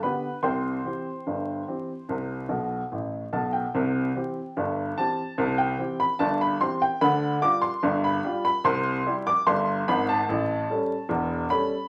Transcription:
0.03 0.25 D3 soft
0.03 0.25 B3 soft
0.03 0.26 G4 soft
0.03 0.41 B4 soft
0.03 0.35 B5 medium
0.43 0.78 C2 medium
0.43 0.78 C3 medium
0.43 2.87 C5 medium
0.43 2.87 G5 soft
0.43 2.87 C6 medium
0.84 1.07 E3 soft
0.84 1.07 C4 soft
0.84 1.07 G4 soft
1.26 1.61 G1 soft
1.26 1.61 G2 soft
1.68 1.90 E3 soft
1.68 1.90 C4 soft
1.68 1.90 G4 soft
2.09 2.43 C2 medium
2.09 2.44 C3 medium
2.49 2.80 B1 soft
2.49 2.80 B2 medium
2.92 3.23 A1 soft
2.92 3.22 A2 soft
3.33 3.63 B1 medium
3.33 3.63 B2 medium
3.33 3.53 A5 medium
3.53 4.68 G5 medium
3.74 4.09 C2 medium
3.74 4.09 C3 medium
4.15 4.37 E3 soft
4.15 4.38 C4 soft
4.15 4.38 G4 soft
4.57 4.91 G1 medium
4.57 4.91 G2 medium
4.98 5.20 E3 soft
4.98 5.20 C4 soft
4.98 5.20 G4 soft
4.98 5.55 A5 medium
5.38 5.73 C2 medium
5.38 5.73 C3 medium
5.58 5.97 G5 medium
5.78 6.01 E3 soft
5.78 6.01 C4 soft
5.78 6.02 G4 soft
6.00 6.20 B5 medium
6.19 6.54 G1 medium
6.19 6.54 G2 medium
6.19 6.40 A5 medium
6.41 6.61 B5 medium
6.60 6.83 E3 soft
6.60 6.83 C4 soft
6.60 6.84 G4 medium
6.60 6.81 C6 medium
6.82 7.02 G5 medium
7.01 7.36 D2 medium
7.01 7.36 D3 medium
7.01 7.34 B5 loud
7.42 7.65 G3 medium
7.42 7.65 F4 soft
7.42 7.65 G4 medium
7.42 7.63 D6 loud
7.62 7.95 C6 medium
7.83 8.18 G1 medium
7.83 8.18 G2 medium
8.04 8.43 B5 medium
8.24 8.47 G3 soft
8.24 8.47 F4 medium
8.24 8.47 G4 medium
8.45 8.65 B5 loud
8.64 9.00 C2 medium
8.64 8.99 C3 loud
8.64 9.14 C6 loud
9.07 9.29 G3 medium
9.07 9.29 E4 medium
9.07 9.29 G4 medium
9.27 9.47 D6 loud
9.47 9.81 G1 medium
9.47 9.81 G2 medium
9.47 9.79 C6 medium
9.88 10.21 G#1 medium
9.88 10.21 G#2 medium
9.88 10.08 B5 loud
10.09 11.23 A5 medium
10.29 10.63 A1 medium
10.29 10.63 A2 medium
10.70 10.92 G3 soft
10.70 10.93 C#4 soft
10.70 10.93 A4 soft
11.09 11.44 E1 medium
11.09 11.44 E2 medium
11.50 11.73 G3 soft
11.50 11.73 C#4 medium
11.50 11.74 A4 soft
11.50 11.88 B5 medium

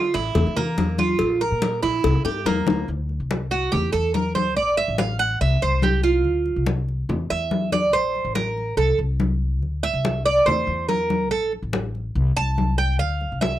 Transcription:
0.00 0.13 D3 medium
0.00 0.13 F4 medium
0.14 0.34 A1 medium
0.14 0.55 E4 medium
0.14 cowbell medium
0.14 high conga soft
0.35 0.45 E2 loud
0.35 cowbell loud
0.35 high conga soft
0.35 low conga medium
0.46 0.76 E3 medium
0.57 0.97 A#3 medium
0.57 high conga soft
0.57 low conga medium
0.78 1.18 E2 loud
0.78 cowbell medium
0.78 high conga medium
0.98 1.40 F4 medium
0.98 high conga medium
1.19 1.50 A#1 medium
1.19 cowbell loud
1.19 high conga soft
1.41 1.82 A#4 medium
1.41 high conga soft
1.52 1.81 A#2 medium
1.62 cowbell medium
1.62 high conga medium
1.83 2.03 A#1 medium
1.83 2.24 E4 medium
1.83 cowbell medium
1.83 high conga soft
2.04 2.13 C2 loud
2.04 cowbell loud
2.04 high bongo medium
2.04 high conga soft
2.14 2.24 C3 medium
2.25 2.44 G2 medium
2.25 2.45 G4 medium
2.25 high bongo medium
2.25 high conga soft
2.45 2.65 E2 medium
2.45 2.87 A#3 medium
2.45 cowbell medium
2.45 low bongo medium
2.45 high conga medium
2.67 2.86 D2 medium
2.67 low bongo loud
2.67 high conga loud
2.88 3.18 D2 medium
2.88 high conga soft
3.09 high conga soft
3.20 3.70 C2 medium
3.31 high conga medium
3.51 3.72 F#4 medium
3.51 high conga soft
3.72 3.93 E2 loud
3.72 3.92 G4 medium
3.72 high conga soft
3.72 low conga medium
3.93 4.57 E2 medium
3.93 4.14 A4 medium
3.93 high conga soft
4.14 4.35 A#4 medium
4.14 high conga medium
4.35 4.56 C5 medium
4.35 high conga medium
4.57 4.87 A#1 medium
4.57 4.77 D5 medium
4.57 high conga soft
4.77 4.98 E5 loud
4.77 high conga soft
4.88 5.38 A1 medium
4.98 5.19 F5 medium
4.98 high conga medium
5.19 5.40 F#5 loud
5.19 high conga soft
5.41 5.61 C2 loud
5.41 5.62 E5 medium
5.41 high conga soft
5.62 6.25 C2 medium
5.62 5.83 C5 medium
5.62 high conga soft
5.82 6.03 G4 medium
5.82 high conga medium
6.04 6.63 F4 medium
6.25 6.55 D2 loud
6.25 high conga soft
6.46 high conga soft
6.56 7.07 C2 medium
6.66 high conga medium
6.89 high conga soft
7.09 7.29 E2 loud
7.09 high conga soft
7.09 low conga medium
7.30 7.94 E2 loud
7.30 7.70 E5 loud
7.30 high conga soft
7.51 high conga medium
7.72 7.93 D5 medium
7.72 high conga medium
7.93 8.24 A#1 medium
7.93 8.33 C5 medium
7.93 high conga soft
8.15 high conga soft
8.25 8.75 A1 medium
8.35 8.75 A#4 medium
8.35 high conga medium
8.57 high conga soft
8.77 8.98 C2 loud
8.77 8.98 A4 medium
8.77 high conga soft
8.99 9.62 C2 medium
8.99 high conga soft
9.20 high conga medium
9.62 9.92 D2 loud
9.62 high conga soft
9.83 10.23 E5 loud
9.83 high conga soft
9.93 10.44 C2 medium
10.05 high conga medium
10.26 10.46 D5 medium
10.26 high conga soft
10.46 10.66 E2 loud
10.46 10.86 C5 medium
10.46 high conga soft
10.46 low conga medium
10.67 11.31 E2 loud
10.67 high conga soft
10.89 11.28 A#4 medium
10.89 high conga medium
11.10 high conga medium
11.31 11.61 A#1 medium
11.31 11.51 A4 medium
11.31 high conga soft
11.52 high conga soft
11.62 12.13 A1 medium
11.73 high conga medium
11.95 high conga soft
12.15 12.35 C2 loud
12.15 high conga soft
12.37 13.00 C2 medium
12.37 12.76 A5 loud
12.37 high conga soft
12.58 high conga medium
12.78 12.99 G5 medium
12.99 13.30 D2 loud
12.99 13.38 F5 medium
12.99 high conga soft
13.21 high conga soft
13.32 13.59 C2 medium
13.41 13.59 E5 medium
13.41 high conga medium

